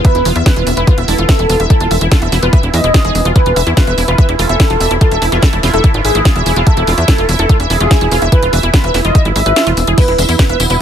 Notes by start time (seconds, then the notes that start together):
Already playing: E3 B3
0.05 B4 E5, kick, closed hi-hat
0.15 E1 E4, closed hi-hat
0.25 E1 F4, open hi-hat
0.36 E2 E5, closed hi-hat
0.46 E4 B4, kick, snare, closed hi-hat
0.56 E1 F4, closed hi-hat
0.67 E1 E5, open hi-hat
0.77 E1 E4 B4, closed hi-hat
0.87 F4, kick, closed hi-hat
0.98 E1 E5, closed hi-hat
1.08 E1 E4 A4, open hi-hat
1.18 E1 F4, closed hi-hat
1.29 E5, kick, snare, closed hi-hat
1.39 E1 E4, closed hi-hat
1.49 E1 F4, open hi-hat
1.60 E1 E5, closed hi-hat
1.70 E4 A4, kick, closed hi-hat
1.80 E1 F4, closed hi-hat
1.91 E1 E5, open hi-hat
2.01 E1 E4, closed hi-hat
2.12 F4 A4, kick, snare, closed hi-hat
2.22 E1 E5, closed hi-hat
2.32 E1 E4, snare, open hi-hat
2.42 E1 F4 B4, closed hi-hat
2.53 E5, kick, closed hi-hat
2.63 E1 E4, closed hi-hat
2.74 E2 D#5 E5, open hi-hat
2.84 E1 E4, closed hi-hat
2.94 F4, kick, snare, closed hi-hat
3.05 E1 G#4, closed hi-hat
3.15 E1, open hi-hat
3.25 E1 F4, closed hi-hat
3.36 B3 E4 B4, kick, closed hi-hat
3.46 E1 F4, closed hi-hat
3.56 E1 E5, open hi-hat
3.67 E2 E4, closed hi-hat
3.77 F4 B4, kick, snare, closed hi-hat
3.87 E1 E5, closed hi-hat
3.98 E1 E4, open hi-hat
4.08 E1 F4 B4, closed hi-hat
4.18 E5, kick, closed hi-hat
4.29 E1 E4, closed hi-hat
4.39 E1 F4 A4, open hi-hat
4.49 E1 E5, closed hi-hat
4.60 E4, kick, snare, closed hi-hat
4.70 E1 F4, closed hi-hat
4.80 E1 E5, open hi-hat
4.91 E1 E4, closed hi-hat
5.01 F4 A4, kick, closed hi-hat
5.11 E1 E5, closed hi-hat
5.22 E1 E4, open hi-hat
5.32 E1 E4 F4, closed hi-hat
5.43 A4 E5, kick, snare, closed hi-hat
5.53 E1 E4, closed hi-hat
5.63 E1 E4 F4, snare, open hi-hat
5.74 E1 A4 E5, closed hi-hat
5.84 E4, kick, closed hi-hat
5.94 G#1 F4, closed hi-hat
6.05 G#1 G#4 E5, open hi-hat
6.15 G#1 E4, closed hi-hat
6.25 F4, kick, snare, closed hi-hat
6.36 E1 E5, closed hi-hat
6.46 E1 E4, open hi-hat
6.56 E1 F4, closed hi-hat
6.67 A4 E5, kick, closed hi-hat
6.77 E1 E4, closed hi-hat
6.87 E1 F4, open hi-hat
6.98 E2 E5, closed hi-hat
7.08 E4 A4, kick, snare, closed hi-hat
7.18 E1 F4, closed hi-hat
7.29 E1 E5, open hi-hat
7.39 E1 E4 A4, closed hi-hat
7.49 F4, kick, closed hi-hat
7.60 E1 E5, closed hi-hat
7.70 E1 E4 G#4, open hi-hat
7.80 E1 F4, closed hi-hat
7.91 E5, kick, snare, closed hi-hat
8.01 E1 E4, closed hi-hat
8.11 E1 F4, open hi-hat
8.22 E1 E5, closed hi-hat
8.32 E4 B4, kick, closed hi-hat
8.43 E1 F4, closed hi-hat
8.53 E1 E5, open hi-hat
8.63 E1 E4, closed hi-hat
8.74 F4 B4, kick, snare, closed hi-hat
8.84 E1 E5, closed hi-hat
8.94 E1 E4, snare, open hi-hat
9.05 E1 F4 D#5, closed hi-hat
9.15 E5, kick, closed hi-hat
9.25 G#1 E4, closed hi-hat
9.36 G#1 E5, open hi-hat
9.46 G#1 B4, closed hi-hat
9.56 F4, snare, closed hi-hat
9.67 E1 F4, closed hi-hat
9.77 E1, open hi-hat
9.87 E1 G#4, closed hi-hat
9.98 E3 B3 E4 B4, kick, closed hi-hat, crash, tambourine
10.08 E1 G#3 E4, closed hi-hat
10.18 E1 G#3 E5, open hi-hat, tambourine
10.28 E2 E4, closed hi-hat, tambourine
10.39 E4 B4, kick, snare, closed hi-hat
10.49 E1 E5, closed hi-hat
10.60 E1 E4, open hi-hat, tambourine
10.70 E1 E4 B4, closed hi-hat, tambourine